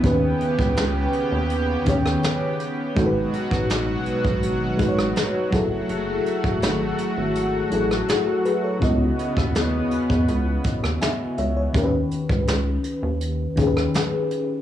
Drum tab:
HH |x-x-x-x-x-x-x-x-|x-x-x-x-x-x-x-x-|x-x-x-x-x-x-x-x-|x-x-x-x-x-x-x-x-|
SD |----o------ro---|---ro------ro---|----o------ro---|---ro------ro---|
BD |o--o------o-----|o--o---o--o---o-|---o------------|o--o---o--o-----|

HH |x-x-x-x-x-x-x-x-|
SD |----o------ro---|
BD |o--o------o-----|